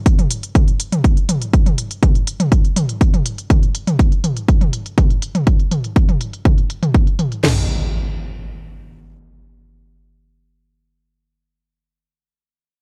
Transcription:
0.06 kick loud
0.06 closed hi-hat soft
0.19 closed hi-hat soft
0.19 mid tom medium
0.31 closed hi-hat medium
0.43 closed hi-hat soft
0.55 kick loud
0.55 closed hi-hat soft
0.55 mid tom medium
0.68 closed hi-hat soft
0.80 closed hi-hat medium
0.92 closed hi-hat soft
0.92 mid tom medium
1.04 kick loud
1.04 closed hi-hat soft
1.17 closed hi-hat soft
1.29 closed hi-hat medium
1.29 mid tom medium
1.42 closed hi-hat soft
1.53 kick loud
1.53 closed hi-hat soft
1.66 closed hi-hat soft
1.66 mid tom medium
1.78 closed hi-hat medium
1.91 closed hi-hat soft
2.03 kick loud
2.03 closed hi-hat soft
2.03 mid tom medium
2.15 closed hi-hat soft
2.27 closed hi-hat medium
2.40 closed hi-hat soft
2.40 mid tom medium
2.52 kick loud
2.52 closed hi-hat soft
2.65 closed hi-hat soft
2.76 closed hi-hat medium
2.76 mid tom medium
2.89 closed hi-hat soft
3.01 kick loud
3.01 closed hi-hat soft
3.14 closed hi-hat soft
3.14 mid tom medium
3.26 closed hi-hat medium
3.38 closed hi-hat soft
3.50 kick loud
3.50 closed hi-hat soft
3.50 mid tom medium
3.63 closed hi-hat soft
3.75 closed hi-hat medium
3.87 closed hi-hat soft
3.87 mid tom medium
3.99 kick loud
3.99 closed hi-hat soft
4.12 closed hi-hat soft
4.24 closed hi-hat medium
4.24 mid tom medium
4.37 closed hi-hat soft
4.48 kick loud
4.48 closed hi-hat soft
4.61 closed hi-hat soft
4.61 mid tom medium
4.73 closed hi-hat medium
4.86 closed hi-hat soft
4.98 kick loud
4.98 closed hi-hat soft
4.98 mid tom medium
5.10 closed hi-hat soft
5.22 closed hi-hat medium
5.35 closed hi-hat soft
5.35 mid tom medium
5.47 kick loud
5.47 closed hi-hat soft
5.60 closed hi-hat soft
5.71 closed hi-hat medium
5.71 mid tom medium
5.84 closed hi-hat soft
5.96 kick loud
5.96 closed hi-hat soft
6.09 closed hi-hat soft
6.09 mid tom medium
6.21 closed hi-hat medium
6.33 closed hi-hat soft
6.45 kick loud
6.45 closed hi-hat soft
6.45 mid tom medium
6.58 closed hi-hat soft
6.70 closed hi-hat medium
6.83 closed hi-hat soft
6.83 mid tom medium
6.94 kick loud
6.94 closed hi-hat soft
7.07 closed hi-hat soft
7.19 closed hi-hat medium
7.19 mid tom medium
7.32 closed hi-hat soft
7.44 snare loud
7.44 floor tom medium
7.44 crash medium
7.44 impact medium

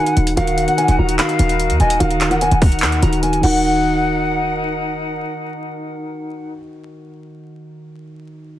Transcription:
0.00 0.36 D#3 loud
0.00 0.15 D#4 medium
0.00 0.37 D#4 loud
0.00 0.37 F#4 loud
0.00 0.38 A#4 loud
0.00 0.33 F#5 loud
0.00 0.14 G#5 medium
0.07 closed hi-hat medium
0.17 0.36 D#1 loud
0.17 closed hi-hat medium
0.27 closed hi-hat loud
0.36 0.67 D#1 loud
0.36 0.94 D#3 loud
0.36 0.94 D#4 loud
0.36 3.40 D#4 medium
0.36 0.95 F#4 loud
0.36 3.40 F#4 medium
0.36 3.40 A#4 medium
0.36 0.95 A#4 loud
0.36 0.66 F5 loud
0.36 1.15 F#5 loud
0.36 closed hi-hat medium
0.47 closed hi-hat medium
0.58 closed hi-hat medium
0.68 0.76 F#5 medium
0.68 closed hi-hat medium
0.78 0.95 G#5 medium
0.78 closed hi-hat medium
0.88 0.98 D#1 loud
0.88 closed hi-hat medium
0.98 1.18 D#1 loud
0.98 1.75 D#3 medium
0.98 1.75 D#4 medium
0.98 1.75 F#4 medium
0.98 1.75 A#4 medium
0.98 1.16 A#5 medium
1.09 closed hi-hat medium
1.19 1.76 F5 loud
1.19 1.36 B5 medium
1.19 clap loud
1.19 closed hi-hat medium
1.29 closed hi-hat medium
1.39 1.71 D#1 loud
1.39 1.78 A#5 medium
1.39 closed hi-hat medium
1.49 closed hi-hat medium
1.60 closed hi-hat medium
1.70 1.80 D#2 loud
1.70 closed hi-hat medium
1.80 2.00 D#1 loud
1.80 1.99 D#5 medium
1.80 1.97 G#5 medium
1.80 closed hi-hat medium
1.90 closed hi-hat medium
2.00 2.49 D#1 loud
2.00 2.29 D#3 loud
2.00 2.29 D#4 loud
2.00 2.29 F#4 medium
2.00 2.29 A#4 loud
2.00 2.29 F5 loud
2.00 closed hi-hat medium
2.11 closed hi-hat medium
2.21 clap medium
2.21 closed hi-hat medium
2.30 2.98 D#3 medium
2.30 2.98 D#4 medium
2.30 2.98 F#4 medium
2.30 2.98 A#4 medium
2.30 2.40 F#5 medium
2.30 closed hi-hat medium
2.41 2.59 G#5 loud
2.41 closed hi-hat medium
2.51 2.84 D#1 loud
2.51 closed hi-hat medium
2.62 3.19 F#5 medium
2.62 2.79 A#5 medium
2.62 kick medium
2.62 open hi-hat medium
2.72 closed hi-hat medium
2.79 3.01 D#2 loud
2.79 2.99 B5 medium
2.79 clap loud
2.79 closed hi-hat medium
2.85 closed hi-hat medium
2.92 closed hi-hat medium
3.02 3.42 D#1 loud
3.02 3.40 D#3 medium
3.02 3.41 D#4 medium
3.02 3.43 F#4 medium
3.02 3.44 A#4 medium
3.02 3.20 A#5 medium
3.02 closed hi-hat medium
3.13 closed hi-hat medium
3.23 3.40 G#5 medium
3.23 closed hi-hat medium
3.33 closed hi-hat medium
3.41 5.23 D#1 loud
3.41 6.50 D#3 medium
3.41 6.52 D#4 medium
3.41 6.53 F#4 medium
3.41 6.53 A#4 medium
3.41 4.82 F#5 medium
3.41 6.53 F#5 medium
3.41 4.82 F#5 loud
3.41 crash medium
3.45 6.55 A#4 medium

